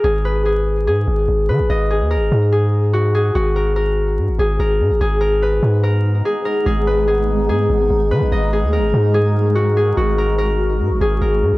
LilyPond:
<<
  \new Staff \with { instrumentName = "Harp" } { \time 4/4 \key gis \minor \tempo 4 = 145 gis'8 b'8 gis'4 gis'4. b'8 | dis''8 gis'8 ais'4 gis'4 fis'8 gis'8 | fis'8 ais'8 ais'4. gis'8 ais'4 | gis'8 ais'8 b'4 ais'4 gis'8 ais'8 |
gis'8 b'8 gis'4 gis'4. b'8 | dis''8 gis'8 ais'4 gis'4 fis'8 gis'8 | fis'8 ais'8 ais'4. gis'8 ais'4 | }
  \new Staff \with { instrumentName = "Ambient pad" } { \time 4/4 \key gis \minor << { r1 | r1 | r1 | <b dis'>1~ |
<b dis'>1 | <fis' ais'>1~ | <fis' ais'>1 | } \\ { r1 | r1 | r1 | gis1~ |
gis1~ | gis1~ | gis1 | } >> }
  \new Staff \with { instrumentName = "808-style bass" } { \clef bass \time 4/4 \key gis \minor gis,,2 gis,8 gis,,8 gis,,8 dis16 gis,,16 | gis,,8. dis,16. gis,,16. gis,2~ gis,8 | gis,,2 gis,16 gis,,16 gis,,8 gis,,8 gis,16 gis,,16 | gis,,4. gis,4. r4 |
gis,,2 gis,8 gis,,8 gis,,8 dis16 gis,,16 | gis,,8. dis,16. gis,,16. gis,2~ gis,8 | gis,,2 gis,16 gis,,16 gis,,8 gis,,8 gis,16 gis,,16 | }
>>